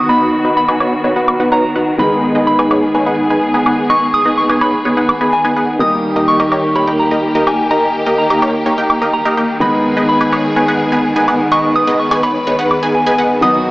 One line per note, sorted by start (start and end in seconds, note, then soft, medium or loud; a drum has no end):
0.00 1.96 D#3 medium
0.00 5.76 D#3 medium
0.00 1.96 F#3 medium
0.00 1.96 B3 medium
0.00 1.97 B3 medium
0.00 1.97 D#4 medium
0.00 1.96 F#4 medium
0.09 0.42 B3 medium
0.09 0.42 D#4 medium
0.09 0.42 F#4 medium
0.09 0.42 B4 medium
0.09 0.42 D#5 medium
0.09 0.56 B5 medium
0.45 0.66 B3 medium
0.45 0.66 D#4 medium
0.45 0.66 F#4 medium
0.45 0.66 B4 medium
0.45 0.66 D#5 medium
0.57 1.55 B5 medium
0.68 0.79 B3 medium
0.68 0.79 D#4 medium
0.68 0.79 F#4 medium
0.68 0.79 B4 medium
0.68 0.79 G#5 loud
0.68 high woodblock medium
0.80 0.93 B3 medium
0.80 0.93 D#4 medium
0.80 0.93 F#4 medium
0.80 0.93 B4 medium
0.80 0.93 C#5 medium
0.80 high woodblock medium
1.04 1.13 B3 medium
1.04 1.13 D#4 medium
1.04 1.13 F#4 medium
1.04 1.13 B4 medium
1.04 1.13 C#5 medium
1.16 1.37 B3 medium
1.16 1.37 D#4 medium
1.16 1.37 F#4 medium
1.16 1.37 B4 medium
1.16 1.37 F#5 medium
1.28 high woodblock medium
1.40 1.49 B3 medium
1.40 1.49 D#4 medium
1.40 1.49 F#4 medium
1.40 1.49 B4 medium
1.40 1.49 F#5 loud
1.52 1.64 B3 medium
1.52 1.64 D#4 medium
1.52 1.64 F#4 medium
1.52 1.64 B4 medium
1.52 1.64 C#5 medium
1.52 1.96 A#5 medium
1.76 1.96 B3 medium
1.76 1.96 D#4 medium
1.76 1.96 F#4 medium
1.76 1.96 B4 medium
1.76 1.96 F#5 medium
1.98 5.77 D#3 medium
1.98 5.77 G#3 medium
1.98 2.32 B3 medium
1.98 5.76 B3 medium
1.98 5.78 B3 medium
1.98 2.32 D#4 medium
1.98 5.78 D#4 medium
1.98 2.32 G#4 medium
1.98 5.77 G#4 medium
1.98 2.32 B4 medium
1.98 2.32 D#5 medium
1.98 2.46 B5 medium
2.35 2.56 B3 medium
2.35 2.56 D#4 medium
2.35 2.56 G#4 medium
2.35 2.56 B4 medium
2.35 2.56 D#5 medium
2.47 2.96 B5 medium
2.59 2.69 B3 medium
2.59 2.69 D#4 medium
2.59 2.69 G#4 medium
2.59 2.69 B4 medium
2.59 2.69 G#5 loud
2.59 high woodblock medium
2.71 2.83 B3 medium
2.71 2.83 D#4 medium
2.71 2.83 G#4 medium
2.71 2.83 B4 medium
2.71 2.83 C#5 medium
2.71 high woodblock medium
2.94 3.04 B3 medium
2.94 3.04 D#4 medium
2.94 3.04 G#4 medium
2.94 3.04 B4 medium
2.94 3.04 C#5 medium
2.94 3.62 G#5 medium
3.06 3.27 B3 medium
3.06 3.27 D#4 medium
3.06 3.27 G#4 medium
3.06 3.27 B4 medium
3.06 3.27 F#5 medium
3.30 3.43 B3 medium
3.30 3.43 D#4 medium
3.30 3.43 G#4 medium
3.30 3.43 B4 medium
3.30 3.43 G#5 medium
3.54 3.63 B3 medium
3.54 3.63 D#4 medium
3.54 3.63 G#4 medium
3.54 3.63 B4 medium
3.54 3.63 G#5 loud
3.66 3.87 B3 medium
3.66 3.87 D#4 medium
3.66 3.87 G#4 medium
3.66 3.87 B4 medium
3.66 3.87 F#5 medium
3.66 high woodblock medium
3.90 4.23 B3 medium
3.90 4.23 D#4 medium
3.90 4.23 G#4 medium
3.90 4.23 B4 medium
3.90 4.23 D#5 medium
3.90 4.14 C#6 loud
4.14 4.38 D#6 loud
4.25 4.46 B3 medium
4.25 4.46 D#4 medium
4.25 4.46 G#4 medium
4.25 4.46 B4 medium
4.25 4.46 D#5 medium
4.37 4.62 C#6 medium
4.49 4.59 B3 medium
4.49 4.59 D#4 medium
4.49 4.59 G#4 medium
4.49 4.60 B4 medium
4.49 4.59 G#5 loud
4.49 high woodblock medium
4.61 4.74 B3 medium
4.61 4.74 D#4 medium
4.61 4.74 G#4 medium
4.61 4.74 B4 medium
4.61 4.74 C#5 medium
4.61 5.35 B5 loud
4.61 high woodblock medium
4.85 4.94 B3 medium
4.85 4.94 D#4 medium
4.85 4.94 G#4 medium
4.85 4.94 B4 medium
4.85 4.94 C#5 medium
4.97 5.18 B3 medium
4.97 5.18 D#4 medium
4.97 5.18 G#4 medium
4.97 5.18 B4 medium
4.97 5.18 F#5 medium
5.09 high woodblock medium
5.21 5.33 B3 medium
5.21 5.33 D#4 medium
5.21 5.33 G#4 medium
5.21 5.33 B4 medium
5.21 5.33 G#5 medium
5.33 5.77 G#5 medium
5.45 5.54 B3 loud
5.45 5.54 D#4 medium
5.45 5.54 G#4 medium
5.45 5.54 B4 medium
5.45 5.54 G#5 loud
5.56 5.77 B3 medium
5.56 5.77 D#4 medium
5.56 5.77 G#4 medium
5.56 5.77 B4 medium
5.56 5.77 F#5 medium
5.79 9.58 D#3 medium
5.79 13.71 D#3 medium
5.79 9.58 G3 medium
5.79 9.57 A#3 medium
5.79 6.13 A#3 medium
5.79 9.59 A#3 medium
5.79 6.13 D#4 medium
5.79 9.59 D#4 medium
5.79 9.57 G4 medium
5.79 6.13 G4 medium
5.79 6.13 A#4 medium
5.79 6.13 D#5 medium
5.79 6.29 D#6 loud
6.16 6.37 A#3 medium
6.16 6.37 D#4 medium
6.16 6.37 G4 medium
6.16 6.37 A#4 medium
6.16 6.37 D#5 medium
6.28 6.77 C#6 medium
6.40 6.50 A#3 medium
6.40 6.50 D#4 medium
6.40 6.50 G4 medium
6.40 6.50 A#4 medium
6.40 6.50 D#5 loud
6.40 high woodblock medium
6.52 6.64 A#3 medium
6.52 6.64 D#4 medium
6.52 6.64 G4 medium
6.52 6.64 A#4 medium
6.52 6.64 C#5 medium
6.52 high woodblock medium
6.75 6.85 A#3 medium
6.75 6.85 D#4 medium
6.75 6.85 G4 medium
6.75 6.85 A#4 medium
6.75 6.85 C#5 medium
6.75 6.98 B5 medium
6.87 7.08 A#3 medium
6.87 7.08 D#4 medium
6.87 7.08 G4 medium
6.87 7.08 A#4 medium
6.87 7.08 G5 medium
6.99 7.48 A#5 medium
7.11 7.24 A#3 medium
7.11 7.24 D#4 medium
7.11 7.24 G4 medium
7.11 7.24 A#4 medium
7.11 7.24 D#5 medium
7.35 7.44 A#3 medium
7.35 7.44 D#4 medium
7.35 7.44 G4 medium
7.35 7.44 A#4 medium
7.35 7.44 D#5 loud
7.47 7.68 A#3 medium
7.47 7.68 D#4 medium
7.47 7.68 G4 medium
7.47 7.68 A#4 medium
7.47 7.68 G5 medium
7.47 7.69 G#5 medium
7.47 high woodblock medium
7.71 8.04 A#3 medium
7.71 8.04 D#4 medium
7.71 8.04 G4 medium
7.71 8.04 A#4 medium
7.71 8.04 D#5 medium
7.71 8.15 A#5 medium
8.06 8.27 A#3 medium
8.06 8.27 D#4 medium
8.06 8.27 G4 medium
8.06 8.27 A#4 medium
8.06 8.27 D#5 medium
8.18 9.12 A#5 medium
8.30 8.40 A#3 medium
8.30 8.40 D#4 medium
8.30 8.40 G4 medium
8.30 8.40 A#4 medium
8.30 8.40 D#5 medium
8.30 high woodblock medium
8.42 8.55 A#3 medium
8.42 8.55 D#4 medium
8.42 8.55 G4 medium
8.42 8.55 A#4 medium
8.42 8.55 C#5 loud
8.42 high woodblock medium
8.66 8.75 A#3 medium
8.66 8.75 D#4 medium
8.66 8.75 G4 medium
8.66 8.75 A#4 medium
8.66 8.75 C#5 medium
8.78 8.99 A#3 medium
8.78 8.99 D#4 medium
8.78 8.99 G4 medium
8.78 8.99 A#4 medium
8.78 8.99 G5 medium
8.90 high woodblock medium
9.02 9.14 A#3 medium
9.02 9.14 D#4 medium
9.02 9.14 G4 medium
9.02 9.14 A#4 medium
9.02 9.14 D#5 medium
9.13 9.63 A#5 medium
9.25 9.35 A#3 medium
9.25 9.35 D#4 medium
9.25 9.35 G4 medium
9.25 9.35 A#4 medium
9.25 9.35 D#5 loud
9.37 9.58 A#3 medium
9.37 9.58 D#4 medium
9.37 9.58 G4 medium
9.37 9.58 A#4 medium
9.37 9.58 G5 medium
9.60 13.39 D#3 medium
9.60 13.39 G#3 medium
9.60 9.94 B3 medium
9.60 13.71 B3 medium
9.60 13.40 B3 medium
9.60 9.94 D#4 medium
9.60 13.40 D#4 medium
9.60 9.94 G#4 medium
9.60 11.50 G#4 medium
9.60 9.94 B4 medium
9.60 9.94 D#5 medium
9.60 10.05 B5 medium
9.97 10.18 B3 medium
9.97 10.18 D#4 medium
9.97 10.18 G#4 medium
9.97 10.18 B4 medium
9.97 10.18 D#5 medium
10.09 10.58 B5 medium
10.21 10.31 B3 medium
10.21 10.31 D#4 medium
10.21 10.31 G#4 medium
10.21 10.31 B4 medium
10.21 10.31 G#5 medium
10.21 high woodblock medium
10.32 10.45 B3 medium
10.32 10.45 D#4 medium
10.32 10.45 G#4 medium
10.32 10.45 B4 medium
10.32 10.45 C#5 loud
10.32 high woodblock medium
10.56 10.65 B3 medium
10.56 10.65 D#4 medium
10.56 10.65 G#4 medium
10.56 10.65 B4 medium
10.56 10.65 C#5 medium
10.56 11.24 G#5 medium
10.68 10.89 B3 medium
10.68 10.89 D#4 medium
10.68 10.89 G#4 medium
10.68 10.89 B4 medium
10.68 10.89 F#5 medium
10.92 11.05 B3 medium
10.92 11.05 D#4 medium
10.92 11.05 G#4 medium
10.92 11.05 B4 medium
10.92 11.05 G#5 medium
11.16 11.25 B3 medium
11.16 11.25 D#4 medium
11.16 11.25 G#4 medium
11.16 11.25 B4 medium
11.16 11.25 G#5 loud
11.28 11.49 B3 medium
11.28 11.49 D#4 medium
11.28 11.49 G#4 medium
11.28 11.49 B4 medium
11.28 11.49 F#5 medium
11.28 high woodblock medium
11.52 11.84 B3 medium
11.52 11.84 D#4 medium
11.52 11.84 G#4 medium
11.52 11.84 B4 medium
11.52 13.40 B4 medium
11.52 11.84 D#5 medium
11.52 11.62 C#6 loud
11.76 12.00 D#6 medium
11.87 12.08 B3 medium
11.87 12.08 D#4 medium
11.87 12.08 G#4 medium
11.87 12.08 B4 medium
11.87 12.08 D#5 medium
11.99 12.22 C#6 medium
12.11 12.21 B3 medium
12.11 12.21 D#4 medium
12.11 12.21 G#4 medium
12.11 12.21 B4 medium
12.11 12.21 G#5 loud
12.11 high woodblock medium
12.23 12.36 B3 medium
12.23 12.36 D#4 medium
12.23 12.36 G#4 medium
12.23 12.36 B4 medium
12.23 12.36 C#5 medium
12.23 12.97 B5 loud
12.23 high woodblock medium
12.47 12.56 B3 medium
12.47 12.56 D#4 medium
12.47 12.56 G#4 medium
12.47 12.56 B4 medium
12.47 12.56 C#5 medium
12.59 12.80 B3 medium
12.59 12.80 D#4 medium
12.59 12.80 G#4 medium
12.59 12.80 B4 medium
12.59 12.80 F#5 medium
12.71 high woodblock medium
12.83 12.95 B3 medium
12.83 12.95 D#4 medium
12.83 12.95 G#4 medium
12.83 12.95 B4 medium
12.83 12.95 G#5 medium
12.95 13.39 G#5 medium
13.06 13.15 B3 medium
13.06 13.15 D#4 medium
13.06 13.15 G#4 medium
13.06 13.15 B4 medium
13.06 13.15 G#5 loud
13.18 13.39 B3 medium
13.18 13.39 D#4 medium
13.18 13.39 G#4 medium
13.18 13.39 B4 medium
13.18 13.39 F#5 medium
13.41 13.71 D#3 medium
13.41 13.71 F#3 medium
13.41 13.71 B3 medium
13.41 13.71 D#4 medium
13.41 13.71 F#4 medium
13.41 13.71 B4 medium
13.41 13.71 D#5 medium
13.41 13.71 D#6 loud